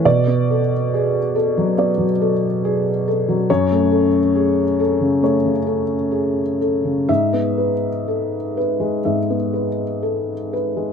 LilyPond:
<<
  \new Staff \with { instrumentName = "Felt piano" } { \time 4/4 \key e \mixolydian \tempo 4 = 68 << { d''4 r2. | cis''4 r2. | e''4 r2. | } \\ { r8 a'8 gis'8 a'8 d''8 a'8 gis'8 a'8 | r8 a'8 gis'8 a'8 cis''8 a'8 gis'8 a'8 | r8 b'8 a'8 b'8 e''8 b'8 a'8 b'8 | } >> }
  \new Staff \with { instrumentName = "Felt piano" } { \clef bass \time 4/4 \key e \mixolydian b,16 b8 r4 fis16 b16 fis8 r4 fis16 | fis,16 a8 r4 cis16 a16 cis8 r4 cis16 | gis,16 b8 r4 gis16 gis,16 b8 r4 gis16 | }
>>